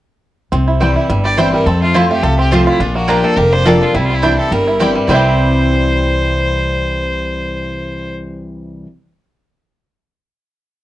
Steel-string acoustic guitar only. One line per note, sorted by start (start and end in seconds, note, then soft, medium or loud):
0.52 1.07 C3 medium
0.80 1.08 E3 medium
0.80 1.08 G3 medium
0.80 1.08 C4 medium
0.80 1.09 E4 medium
1.09 1.64 G2 medium
1.37 1.65 E3 medium
1.37 1.65 G3 medium
1.37 1.65 C4 loud
1.37 1.66 E4 medium
1.66 2.21 F2 medium
1.94 2.22 F3 medium
1.94 2.22 A3 medium
1.94 2.22 C4 medium
1.94 2.23 F4 medium
2.23 2.78 C3 medium
2.52 2.79 F3 medium
2.52 2.79 A3 medium
2.52 2.80 C4 medium
2.52 2.80 F4 loud
2.81 3.35 A#2 medium
3.08 3.36 F3 medium
3.08 3.36 A#3 medium
3.08 3.36 D4 medium
3.08 3.37 F4 medium
3.37 3.92 F2 medium
3.66 3.93 F3 medium
3.66 3.93 A#3 medium
3.66 3.94 D4 medium
3.66 3.94 F4 medium
3.95 4.49 C3 medium
4.23 4.50 E3 medium
4.23 4.51 G3 medium
4.23 4.51 C4 medium
4.23 4.51 E4 medium
4.52 5.06 G2 loud
4.80 5.07 E3 medium
4.80 5.08 G3 medium
4.80 5.08 C4 medium
4.80 5.08 E4 loud
5.08 8.86 C3 medium
5.08 8.86 E3 medium
5.08 8.87 G3 medium
5.08 8.87 C4 medium
5.08 8.87 E4 medium